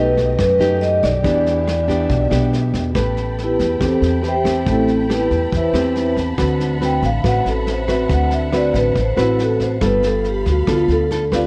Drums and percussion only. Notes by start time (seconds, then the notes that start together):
0.17 kick, snare
0.39 kick, cross-stick, snare
0.61 snare
0.82 snare
1.03 kick, cross-stick, snare
1.24 kick, snare
1.46 snare
1.67 cross-stick, snare
1.88 kick, snare
2.10 kick, snare
2.31 cross-stick, snare
2.53 snare
2.74 kick, snare
2.95 kick, cross-stick, snare
3.17 snare
3.38 snare
3.59 kick, snare
3.81 kick, cross-stick, snare
4.02 snare
4.24 snare
4.45 kick, cross-stick, snare
4.66 kick, snare
4.88 snare
5.10 cross-stick, snare
5.31 kick, snare
5.52 kick, snare
5.74 cross-stick, snare
5.96 snare
6.17 kick, snare
6.38 kick, cross-stick, snare
6.60 snare
6.82 snare
7.03 kick, snare
7.24 kick, cross-stick, snare
7.46 snare
7.67 snare
7.88 kick, cross-stick, snare
8.09 kick, snare
8.31 snare
8.53 cross-stick, snare
8.74 kick, snare
8.96 kick, snare
9.18 cross-stick, snare
9.39 snare
9.60 kick, snare
9.81 kick, cross-stick, snare
10.03 snare
10.24 snare
10.46 kick, snare
10.67 kick, cross-stick, snare
10.89 snare
11.11 snare
11.32 kick, cross-stick, snare